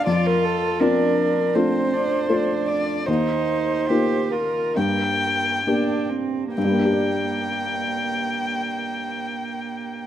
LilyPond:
<<
  \new Staff \with { instrumentName = "Violin" } { \time 4/4 \key g \minor \tempo 4 = 68 d''16 bes'16 a'8 bes'4 c''4. d''8 | c''4. bes'8 g''4. r8 | g''1 | }
  \new Staff \with { instrumentName = "Cello" } { \time 4/4 \key g \minor f'4 d'4 c'8 d'8 d'4 | ees'4 g'8 f'8 bes4 d'8 c'8 | bes1 | }
  \new Staff \with { instrumentName = "Felt piano" } { \time 4/4 \key g \minor f,4 <c' d' f'>4 <a d' f'>4 <a d' f'>4 | ees,4 <bes ees' f'>4 g,4 <bes d' g'>4 | <g, g bes d' g' d''>1 | }
>>